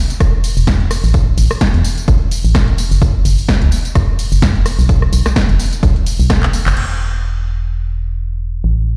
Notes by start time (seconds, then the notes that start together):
0.10 closed hi-hat, tambourine
0.20 E1, kick, cross-stick, closed hi-hat, tambourine
0.44 open hi-hat, tambourine
0.57 E1, tambourine
0.67 kick, snare, closed hi-hat, tambourine
0.80 closed hi-hat
0.91 cross-stick, open hi-hat, tambourine
1.04 A1, tambourine
1.14 kick, closed hi-hat, tambourine
1.38 A1, open hi-hat, tambourine
1.51 cross-stick, tambourine
1.61 kick, snare, closed hi-hat, tambourine
1.74 E2, closed hi-hat
1.84 open hi-hat, tambourine
1.98 closed hi-hat, tambourine
2.08 A1, kick, closed hi-hat, tambourine
2.31 open hi-hat, tambourine
2.45 A1, tambourine
2.55 kick, cross-stick, snare, closed hi-hat, tambourine
2.68 closed hi-hat
2.78 open hi-hat, tambourine
2.91 F#1, tambourine
3.02 kick, closed hi-hat, tambourine
3.25 F#1, open hi-hat, tambourine
3.38 tambourine
3.49 kick, snare, closed hi-hat, tambourine
3.62 C#2, closed hi-hat
3.72 open hi-hat, tambourine
3.85 closed hi-hat, tambourine
3.95 F#1, kick, cross-stick, closed hi-hat, tambourine
4.19 open hi-hat, tambourine
4.32 F#1, tambourine
4.42 kick, snare, closed hi-hat, tambourine
4.55 closed hi-hat
4.66 cross-stick, open hi-hat, tambourine
4.79 B1, tambourine
4.89 kick, closed hi-hat, tambourine
5.02 cross-stick
5.13 B1, open hi-hat, tambourine
5.26 cross-stick, snare, closed hi-hat, tambourine
5.36 kick, snare, closed hi-hat
5.49 F#1, closed hi-hat
5.60 open hi-hat, tambourine
5.73 closed hi-hat, tambourine
5.83 B1, kick, closed hi-hat, tambourine
5.96 closed hi-hat
6.06 open hi-hat, tambourine
6.20 B1, tambourine
6.30 kick, cross-stick, snare, closed hi-hat, tambourine
6.43 clap, closed hi-hat
6.53 open hi-hat, tambourine
6.66 F#1, clap, tambourine
6.77 E1, crash
8.64 A1